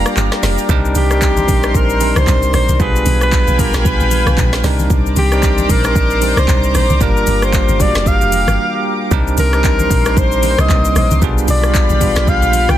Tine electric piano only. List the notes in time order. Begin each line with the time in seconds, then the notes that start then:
Already playing: G3 A#3 D4 F4 A#4
0.69 G3 C4 D4 D#4 A#4
1.10 G3 C4 D4 D#4 A#4
1.63 G3 C4 D4 D#4 G4
2.01 G3 C4 D4 D#4 A#4
2.79 G3 B3 D4 F4 G#4
3.58 G3 B3 D4 F4 G4
4.64 G3 C4 D4 D#4 A#4
5.32 G3 C4 D4 D#4 A#4
5.84 G3 C4 D4 D#4 A#4
6.22 G3 C4 D4 D#4 G4
7.01 G3 A#3 D4 F4 A#4
7.80 G3 A#3 D4 F4 F#4
7.88 G4
9.11 G3 C4 D4 D#4 A#4
9.53 G3 C4 D4 D#4 A#4
10.05 G3 C4 D4 D#4 C5
10.43 G3 A#3 C4 D#4 B4
10.51 C5
11.22 G3 B3 D4 F4 G#4
12.01 G3 B3 D4 F4 G4